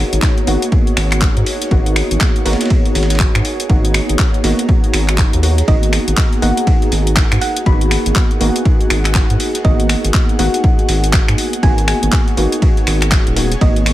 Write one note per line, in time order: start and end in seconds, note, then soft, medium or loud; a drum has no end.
0.00 0.45 A#3 medium
0.00 0.45 B3 medium
0.00 0.45 D#4 medium
0.00 0.45 F#4 medium
0.00 13.93 G#4 medium
0.00 7.67 A#4 medium
0.00 5.67 C#5 medium
0.00 2.56 F#5 medium
0.13 0.19 G#1 medium
0.13 closed hi-hat medium
0.22 kick loud
0.22 snare loud
0.22 clap loud
0.22 ride medium
0.38 closed hi-hat soft
0.47 0.57 G#1 medium
0.47 1.69 A#3 medium
0.47 1.69 B3 medium
0.47 1.69 D#4 medium
0.47 1.69 F#4 loud
0.47 open hi-hat medium
0.47 ride medium
0.62 closed hi-hat medium
0.72 kick loud
0.72 ride medium
0.87 closed hi-hat soft
0.97 1.28 G#1 loud
0.97 finger snap medium
0.97 open hi-hat medium
0.97 ride medium
1.11 finger snap medium
1.11 clap soft
1.11 closed hi-hat medium
1.21 kick loud
1.21 snare loud
1.21 clap loud
1.21 ride medium
1.37 1.43 G#2 medium
1.37 closed hi-hat soft
1.46 open hi-hat medium
1.46 ride medium
1.61 snare medium
1.61 closed hi-hat medium
1.71 2.02 G#1 loud
1.71 2.43 A#3 medium
1.71 2.43 B3 medium
1.71 2.43 D#4 medium
1.71 2.44 F#4 medium
1.71 kick loud
1.71 ride medium
1.86 closed hi-hat medium
1.96 finger snap medium
1.96 open hi-hat medium
1.96 ride medium
2.11 2.17 G#1 medium
2.11 closed hi-hat medium
2.20 kick medium
2.20 snare loud
2.20 clap loud
2.20 ride medium
2.36 closed hi-hat soft
2.45 2.55 G#1 medium
2.45 3.67 A#3 medium
2.45 3.67 B3 medium
2.45 3.67 D#4 medium
2.45 3.67 F#4 loud
2.45 snare medium
2.45 open hi-hat medium
2.45 ride medium
2.53 6.52 A#5 medium
2.53 snare medium
2.53 ride medium
2.61 snare medium
2.61 closed hi-hat medium
2.61 ride medium
2.65 snare medium
2.65 ride medium
2.70 kick loud
2.70 ride medium
2.85 closed hi-hat soft
2.95 3.26 G#1 loud
2.95 snare medium
2.95 open hi-hat loud
2.95 ride medium
3.03 snare medium
3.03 ride medium
3.10 snare medium
3.10 closed hi-hat medium
3.10 ride medium
3.15 snare medium
3.15 ride medium
3.19 kick medium
3.19 clap loud
3.19 ride medium
3.35 3.41 G#2 medium
3.35 finger snap medium
3.35 closed hi-hat medium
3.45 open hi-hat medium
3.45 ride medium
3.60 closed hi-hat medium
3.69 4.00 G#1 medium
3.69 4.41 A#3 medium
3.69 4.42 B3 medium
3.69 4.42 D#4 medium
3.69 4.42 F#4 medium
3.69 kick loud
3.69 ride medium
3.85 closed hi-hat medium
3.94 finger snap medium
3.94 open hi-hat medium
3.94 ride medium
4.09 4.16 G#1 medium
4.09 closed hi-hat medium
4.19 kick medium
4.19 snare loud
4.19 clap loud
4.19 ride medium
4.34 closed hi-hat soft
4.43 4.53 G#1 medium
4.43 5.41 A#3 medium
4.43 5.41 B3 medium
4.43 5.41 D#4 medium
4.43 5.41 F#4 loud
4.43 snare loud
4.43 open hi-hat medium
4.43 ride medium
4.59 closed hi-hat medium
4.69 kick loud
4.69 ride medium
4.84 closed hi-hat soft
4.93 5.24 G#1 loud
4.93 finger snap medium
4.93 open hi-hat loud
4.93 ride medium
5.08 finger snap medium
5.08 clap soft
5.08 closed hi-hat medium
5.18 kick medium
5.18 snare soft
5.18 clap loud
5.18 ride medium
5.33 5.62 D#2 medium
5.33 closed hi-hat medium
5.43 5.56 A#3 medium
5.43 5.56 B3 medium
5.43 5.56 D#4 medium
5.43 5.56 F#4 medium
5.43 open hi-hat loud
5.43 ride medium
5.58 snare soft
5.58 closed hi-hat medium
5.67 5.99 G#1 medium
5.67 6.40 A#3 medium
5.67 6.40 B3 medium
5.67 6.40 D#4 medium
5.67 6.40 F#4 medium
5.67 5.89 D#5 medium
5.67 13.60 F#5 medium
5.67 kick loud
5.67 ride medium
5.83 closed hi-hat soft
5.93 finger snap medium
5.93 open hi-hat loud
5.93 ride medium
6.08 6.14 G#1 medium
6.08 closed hi-hat medium
6.17 kick loud
6.17 snare loud
6.17 clap loud
6.17 ride medium
6.33 closed hi-hat soft
6.42 6.52 G#1 medium
6.42 7.64 A#3 medium
6.42 7.64 B3 medium
6.42 7.64 D#4 medium
6.42 7.64 F#4 medium
6.42 6.63 F#5 medium
6.42 open hi-hat loud
6.42 ride medium
6.49 10.49 F#5 medium
6.57 closed hi-hat medium
6.67 kick loud
6.67 ride medium
6.82 closed hi-hat soft
6.92 7.23 G#1 loud
6.92 snare soft
6.92 open hi-hat loud
6.92 ride medium
7.07 closed hi-hat medium
7.16 kick loud
7.16 snare loud
7.16 clap loud
7.16 ride medium
7.32 7.38 G#2 medium
7.32 finger snap medium
7.32 closed hi-hat soft
7.32 ride soft
7.41 7.62 F#5 medium
7.41 open hi-hat loud
7.41 ride medium
7.56 closed hi-hat medium
7.66 7.97 G#1 loud
7.66 8.38 A#3 medium
7.66 8.38 B3 medium
7.66 8.38 D#4 medium
7.66 8.39 F#4 medium
7.66 8.06 B5 medium
7.66 kick loud
7.66 ride medium
7.81 closed hi-hat medium
7.91 finger snap medium
7.91 open hi-hat loud
7.91 ride medium
8.06 8.12 G#1 medium
8.06 closed hi-hat medium
8.15 kick loud
8.15 snare loud
8.15 clap loud
8.15 ride medium
8.31 closed hi-hat soft
8.40 8.50 G#1 medium
8.40 9.62 A#3 medium
8.40 9.62 B3 medium
8.40 9.62 D#4 medium
8.40 9.63 F#4 loud
8.40 open hi-hat loud
8.40 ride medium
8.56 closed hi-hat medium
8.65 kick loud
8.65 ride medium
8.81 closed hi-hat soft
8.90 9.21 G#1 loud
8.90 finger snap medium
8.90 open hi-hat loud
8.90 ride medium
9.05 finger snap medium
9.05 clap soft
9.05 closed hi-hat medium
9.14 kick loud
9.14 snare loud
9.14 clap loud
9.14 ride medium
9.30 9.36 G#2 medium
9.30 closed hi-hat medium
9.40 open hi-hat loud
9.40 ride medium
9.55 snare medium
9.55 closed hi-hat medium
9.64 9.96 G#1 medium
9.64 10.36 A#3 medium
9.64 10.37 B3 medium
9.64 10.37 D#4 medium
9.64 10.37 F#4 medium
9.64 9.86 D#5 medium
9.64 kick loud
9.64 ride medium
9.80 closed hi-hat soft
9.89 finger snap medium
9.89 open hi-hat loud
9.89 ride medium
10.04 10.11 G#1 medium
10.04 closed hi-hat medium
10.14 kick loud
10.14 snare loud
10.14 clap loud
10.14 ride medium
10.29 closed hi-hat soft
10.39 10.48 G#1 medium
10.39 11.60 A#3 medium
10.39 11.61 B3 medium
10.39 11.61 D#4 medium
10.39 11.61 F#4 loud
10.39 10.60 F#5 medium
10.39 open hi-hat loud
10.39 ride medium
10.46 13.93 C#5 medium
10.54 closed hi-hat medium
10.64 kick loud
10.64 ride medium
10.79 closed hi-hat soft
10.89 11.20 G#1 loud
10.89 snare soft
10.89 open hi-hat loud
10.89 ride medium
11.04 closed hi-hat medium
11.13 kick loud
11.13 snare loud
11.13 clap loud
11.13 ride medium
11.28 11.35 G#2 medium
11.28 finger snap medium
11.28 closed hi-hat soft
11.28 ride soft
11.38 open hi-hat loud
11.38 ride medium
11.53 closed hi-hat medium
11.62 11.94 G#1 medium
11.62 12.35 A#3 medium
11.62 12.35 B3 medium
11.62 12.35 D#4 medium
11.62 12.35 F#4 medium
11.62 11.86 G#5 medium
11.62 kick loud
11.62 ride medium
11.78 closed hi-hat soft
11.88 12.37 G#5 medium
11.88 finger snap medium
11.88 open hi-hat loud
11.88 ride medium
12.03 12.09 G#1 medium
12.03 closed hi-hat medium
12.12 kick loud
12.12 snare loud
12.12 clap loud
12.12 ride medium
12.28 closed hi-hat soft
12.37 12.47 G#1 medium
12.37 13.34 A#3 medium
12.37 13.35 B3 medium
12.37 13.35 D#4 medium
12.37 13.35 F#4 medium
12.37 open hi-hat loud
12.37 ride medium
12.52 closed hi-hat medium
12.62 kick loud
12.62 ride medium
12.77 closed hi-hat soft
12.87 13.18 G#1 loud
12.87 finger snap medium
12.87 open hi-hat loud
12.87 ride medium
13.01 finger snap medium
13.01 clap soft
13.01 closed hi-hat medium
13.11 kick loud
13.11 snare loud
13.11 clap loud
13.11 ride medium
13.27 13.56 D#1 medium
13.27 closed hi-hat soft
13.36 13.50 A#3 medium
13.36 13.50 B3 medium
13.36 13.50 D#4 medium
13.36 13.50 F#4 medium
13.36 snare loud
13.36 open hi-hat loud
13.36 ride medium
13.52 snare medium
13.52 closed hi-hat medium
13.61 13.92 G#1 loud
13.61 13.93 A#3 medium
13.61 13.93 B3 medium
13.61 13.93 D#4 medium
13.61 13.93 F#4 medium
13.61 13.93 D#5 medium
13.61 13.82 D#5 medium
13.61 kick loud
13.61 ride medium
13.76 closed hi-hat soft
13.86 finger snap medium
13.86 open hi-hat loud
13.86 ride medium